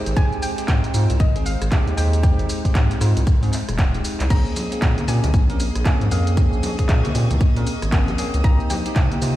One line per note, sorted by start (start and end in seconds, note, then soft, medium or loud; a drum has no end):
0.00 0.14 G#3 medium
0.00 4.26 G#3 medium
0.00 0.14 C4 medium
0.00 0.14 D#4 medium
0.00 4.26 D#4 medium
0.00 0.14 G4 loud
0.00 6.33 C5 medium
0.00 1.94 G5 medium
0.06 0.14 G#1 medium
0.06 closed hi-hat medium
0.06 shaker soft
0.16 0.29 G#1 loud
0.16 0.54 G#3 medium
0.16 0.54 C4 medium
0.16 0.54 D#4 medium
0.16 0.55 G4 loud
0.16 0.43 G#5 loud
0.16 kick loud
0.16 shaker soft
0.32 shaker soft
0.42 0.54 G5 loud
0.42 open hi-hat loud
0.42 shaker medium
0.58 0.91 G#3 medium
0.58 0.92 C4 medium
0.58 0.92 D#4 medium
0.58 0.92 G4 medium
0.58 closed hi-hat medium
0.58 shaker soft
0.68 0.81 G#2 medium
0.68 1.21 G5 loud
0.68 kick loud
0.68 clap loud
0.68 shaker soft
0.84 closed hi-hat medium
0.84 shaker soft
0.94 1.06 G#2 medium
0.94 1.12 G#3 medium
0.94 1.12 C4 medium
0.94 1.12 D#4 medium
0.94 1.12 F4 loud
0.94 open hi-hat loud
0.94 shaker medium
1.10 1.18 C2 loud
1.10 closed hi-hat medium
1.10 shaker soft
1.20 1.56 G#1 medium
1.20 1.47 D#5 loud
1.20 kick loud
1.20 shaker soft
1.35 1.49 G#3 medium
1.35 1.49 C4 medium
1.35 1.49 D#4 medium
1.35 1.50 G#4 loud
1.35 closed hi-hat medium
1.35 shaker soft
1.46 1.99 F5 loud
1.46 open hi-hat loud
1.46 shaker medium
1.62 1.70 G#1 medium
1.62 cross-stick medium
1.62 closed hi-hat medium
1.62 shaker soft
1.71 1.95 G#3 medium
1.71 1.95 C4 medium
1.71 1.95 D#4 medium
1.71 1.95 G4 loud
1.71 kick loud
1.71 clap loud
1.71 shaker soft
1.87 1.95 D#2 loud
1.87 closed hi-hat soft
1.87 shaker soft
1.97 2.34 D#2 medium
1.97 2.21 G#3 medium
1.97 2.21 C4 medium
1.97 2.21 D#4 medium
1.97 2.21 G4 loud
1.97 2.21 G5 loud
1.97 open hi-hat loud
1.97 shaker medium
2.13 closed hi-hat medium
2.13 shaker soft
2.23 2.61 G#3 medium
2.23 2.61 C4 medium
2.23 2.61 D#4 medium
2.23 2.61 G4 medium
2.23 3.23 G5 medium
2.23 kick loud
2.23 shaker soft
2.39 2.47 G#1 loud
2.39 closed hi-hat soft
2.39 shaker soft
2.49 open hi-hat loud
2.49 shaker medium
2.65 2.98 G#3 medium
2.65 2.99 C4 medium
2.65 2.99 D#4 medium
2.65 2.99 G4 medium
2.65 kick medium
2.65 closed hi-hat medium
2.65 shaker soft
2.75 2.87 G#2 medium
2.75 kick loud
2.75 clap loud
2.75 shaker soft
2.91 closed hi-hat medium
2.91 shaker soft
3.01 3.13 G#2 medium
3.01 3.19 G#3 medium
3.01 3.19 C4 medium
3.01 3.19 D#4 medium
3.01 3.19 F4 medium
3.01 cross-stick medium
3.01 open hi-hat loud
3.01 shaker medium
3.17 3.25 C2 loud
3.17 closed hi-hat medium
3.17 shaker soft
3.27 kick loud
3.27 shaker soft
3.42 3.51 G#2 medium
3.42 3.56 G#3 medium
3.42 3.56 C4 medium
3.42 3.56 D#4 medium
3.42 3.57 G#4 loud
3.42 open hi-hat medium
3.42 shaker soft
3.53 clap soft
3.53 open hi-hat loud
3.53 shaker medium
3.68 4.01 D#1 medium
3.68 cross-stick medium
3.68 closed hi-hat medium
3.68 shaker soft
3.79 kick loud
3.79 clap loud
3.79 shaker soft
3.94 4.28 G#3 medium
3.94 4.28 C4 medium
3.94 4.28 D#4 medium
3.94 4.28 G4 medium
3.94 closed hi-hat soft
3.94 shaker soft
4.05 open hi-hat loud
4.05 shaker medium
4.20 4.28 C2 medium
4.20 clap medium
4.20 closed hi-hat medium
4.20 shaker soft
4.30 4.43 A#1 loud
4.30 4.68 A#3 medium
4.30 9.36 A#3 medium
4.30 4.68 C4 medium
4.30 4.68 C#4 medium
4.30 8.40 G#4 medium
4.30 4.68 G#4 medium
4.30 9.36 D#5 medium
4.30 4.81 A#5 loud
4.30 9.36 D#6 medium
4.30 kick loud
4.30 crash medium
4.30 shaker soft
4.46 shaker soft
4.56 open hi-hat loud
4.56 high conga medium
4.56 shaker medium
4.71 5.05 A#3 medium
4.71 5.05 C4 medium
4.71 5.06 C#4 medium
4.71 5.06 G#4 medium
4.71 closed hi-hat medium
4.71 shaker soft
4.82 4.94 A#2 medium
4.82 5.09 A#5 loud
4.82 kick loud
4.82 clap loud
4.82 shaker soft
4.98 closed hi-hat medium
4.98 low conga medium
4.98 shaker soft
5.08 5.20 A#2 medium
5.08 5.26 A#3 medium
5.08 5.26 C4 medium
5.08 5.26 C#4 medium
5.08 5.26 G4 medium
5.08 5.84 G#5 loud
5.08 open hi-hat loud
5.08 shaker medium
5.23 5.32 C#2 loud
5.23 closed hi-hat medium
5.23 high conga medium
5.23 low conga loud
5.23 shaker soft
5.34 5.70 A#1 medium
5.34 kick loud
5.34 shaker soft
5.49 5.63 A#3 medium
5.49 5.63 C4 medium
5.49 5.63 C#4 medium
5.49 5.63 A#4 loud
5.49 closed hi-hat medium
5.49 shaker soft
5.60 open hi-hat loud
5.60 shaker medium
5.75 5.83 A#1 medium
5.75 cross-stick medium
5.75 closed hi-hat medium
5.75 shaker soft
5.85 6.09 A#3 medium
5.85 6.09 C4 medium
5.85 6.09 C#4 medium
5.85 6.09 G#4 loud
5.85 6.12 G#5 loud
5.85 kick loud
5.85 clap loud
5.85 shaker soft
6.01 6.09 G#2 loud
6.01 closed hi-hat soft
6.01 high conga medium
6.01 shaker soft
6.11 6.48 F2 medium
6.11 6.35 A#3 medium
6.11 6.35 C4 medium
6.11 6.35 C#4 medium
6.11 6.35 G#4 loud
6.11 7.63 F5 medium
6.11 open hi-hat loud
6.11 shaker medium
6.27 closed hi-hat medium
6.27 shaker soft
6.37 6.75 A#3 medium
6.37 6.75 C4 medium
6.37 6.75 C#4 medium
6.37 6.75 G#4 medium
6.37 8.42 C#6 medium
6.37 kick loud
6.37 shaker soft
6.53 6.61 A#1 loud
6.53 shaker soft
6.63 open hi-hat loud
6.63 high conga loud
6.63 shaker medium
6.78 7.12 A#3 medium
6.78 7.12 C4 medium
6.78 7.12 C#4 medium
6.78 7.13 G#4 medium
6.78 kick medium
6.78 closed hi-hat medium
6.78 shaker soft
6.89 7.01 A#2 medium
6.89 kick loud
6.89 clap loud
6.89 shaker soft
7.05 closed hi-hat medium
7.05 low conga loud
7.05 shaker soft
7.14 7.27 A#2 medium
7.14 7.33 A#3 medium
7.14 7.33 C4 medium
7.14 7.33 C#4 medium
7.14 7.33 G4 medium
7.14 open hi-hat loud
7.14 shaker medium
7.30 7.39 C#2 loud
7.30 closed hi-hat medium
7.30 high conga medium
7.30 low conga loud
7.30 shaker soft
7.41 kick loud
7.41 shaker soft
7.56 7.64 A#2 medium
7.56 7.70 A#3 medium
7.56 7.70 C4 medium
7.56 7.70 C#4 medium
7.56 7.70 A#4 loud
7.56 closed hi-hat medium
7.56 shaker soft
7.67 open hi-hat loud
7.67 shaker medium
7.82 8.15 G#1 medium
7.82 cross-stick medium
7.82 closed hi-hat medium
7.82 shaker soft
7.92 8.16 A#3 loud
7.92 8.16 C4 medium
7.92 8.16 C#4 medium
7.92 8.16 G#4 loud
7.92 kick loud
7.92 clap loud
7.92 shaker soft
8.08 closed hi-hat soft
8.08 high conga medium
8.08 shaker soft
8.18 8.41 A#3 medium
8.18 8.42 C4 medium
8.18 8.42 C#4 medium
8.18 8.42 G#4 loud
8.18 open hi-hat loud
8.18 shaker medium
8.34 8.42 C#2 medium
8.34 closed hi-hat medium
8.34 shaker soft
8.44 8.56 C2 loud
8.44 8.82 A#3 medium
8.44 8.82 C4 medium
8.44 9.36 D#4 medium
8.44 8.82 D#4 medium
8.44 9.36 G4 medium
8.44 8.82 G4 loud
8.44 9.36 C5 medium
8.44 8.71 A#5 loud
8.44 kick loud
8.44 shaker soft
8.60 shaker soft
8.70 8.95 G5 loud
8.70 open hi-hat loud
8.70 high conga loud
8.70 shaker medium
8.85 9.19 A#3 medium
8.85 9.19 C4 medium
8.85 9.19 D#4 medium
8.85 9.20 G4 medium
8.85 closed hi-hat medium
8.85 shaker soft
8.96 9.08 C3 medium
8.96 9.36 G5 loud
8.96 kick loud
8.96 clap loud
8.96 shaker soft
9.12 closed hi-hat medium
9.12 low conga medium
9.12 shaker soft
9.21 9.34 C3 medium
9.21 9.36 A#3 medium
9.21 9.36 C4 medium
9.21 9.36 D#4 medium
9.21 9.36 F4 medium
9.21 open hi-hat loud
9.21 shaker medium